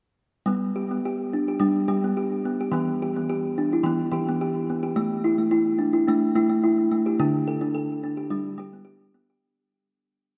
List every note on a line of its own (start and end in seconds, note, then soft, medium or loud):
0.46 1.40 G3 medium
0.46 0.75 B3 medium
0.76 0.90 G4 medium
0.91 1.04 B3 medium
1.05 1.32 G4 medium
1.33 1.47 D4 medium
1.48 1.60 G4 medium
1.60 1.83 G3 medium
1.60 1.88 D4 medium
1.88 2.58 G3 medium
1.88 2.03 G4 medium
2.04 2.17 B3 medium
2.17 2.45 G4 medium
2.45 2.59 B3 medium
2.61 2.73 G4 medium
2.72 3.66 E3 medium
2.72 3.01 B3 medium
3.02 3.16 G4 medium
3.17 3.29 B3 medium
3.30 3.57 G4 medium
3.58 3.72 D4 medium
3.73 3.85 E4 medium
3.84 4.07 E3 medium
3.84 4.13 B3 medium
4.12 4.82 E3 medium
4.12 4.28 G4 medium
4.29 4.41 B3 medium
4.41 4.69 G4 medium
4.70 4.84 B3 medium
4.83 4.96 G4 medium
4.96 5.37 A3 medium
5.24 5.39 E4 medium
5.38 5.52 A3 medium
5.51 5.80 E4 medium
5.79 5.94 D4 medium
5.93 6.07 E4 medium
6.07 6.32 A3 medium
6.07 6.36 D4 medium
6.35 6.48 A3 medium
6.35 6.51 E4 medium
6.49 6.63 A3 medium
6.64 6.92 E4 medium
6.91 7.06 A3 medium
7.06 7.20 G4 medium
7.20 8.13 D3 medium
7.20 7.48 D4 medium
7.48 7.62 A4 medium
7.61 7.75 D4 medium
7.74 8.03 A4 medium
8.03 8.18 D4 medium
8.17 8.31 G4 medium
8.30 8.54 G3 medium
8.30 8.59 D4 medium
8.58 9.28 G3 medium
8.58 8.74 G4 medium
8.73 8.87 B3 medium
8.85 9.14 G4 medium
9.14 9.29 B3 medium
9.30 9.43 G4 medium